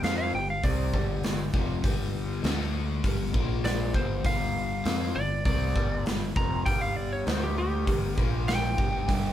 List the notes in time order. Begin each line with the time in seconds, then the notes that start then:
0.03 F2 F3 C4 F4 F5, snare, open hi-hat
0.18 F5
0.33 G1 G2 D3 G5
0.50 F5
0.63 C2 C3 G3 C4 D5, kick, open hi-hat
0.94 G1 G2 D3 G3, kick
1.23 G1 G2 D3, snare, open hi-hat
1.53 F1 F2 C3 F3, kick
1.83 G1 G2 D3 G3, kick, open hi-hat
2.43 D2 D3 A3 D4, snare, open hi-hat
3.04 G1 G2 D3 G3, kick, open hi-hat
3.33 A#1 A#2 F3 A#3, kick
3.65 D5, snare, open hi-hat
3.94 G1 G2 D3 G3 C5, kick
4.23 G1 G2 D3 G3 F5, kick, open hi-hat
4.84 F2 F3 C4 F4, snare, open hi-hat
5.15 G1 G2 D3 D5
5.45 C2 C3 G3 C4 D5, kick, open hi-hat
5.75 G1 G2 D3 G3, kick
6.05 G1 G2 D3, snare, open hi-hat
6.36 F1 F2 C3 F3 A#5, kick
6.65 G1 G2 D3 G3 G5, kick, open hi-hat
6.81 F5
6.96 D5
7.13 C#5
7.26 D2 D3 A3 D4 C5, snare, open hi-hat
7.43 G4
7.58 G4
7.86 G1 G2 D3 G3, kick, open hi-hat
8.17 A#1 A#2 F3 A#3, kick
8.48 G5, snare, open hi-hat
8.77 G1 G2 D3 G3, kick
9.07 G1 G2 D3 G3, kick, open hi-hat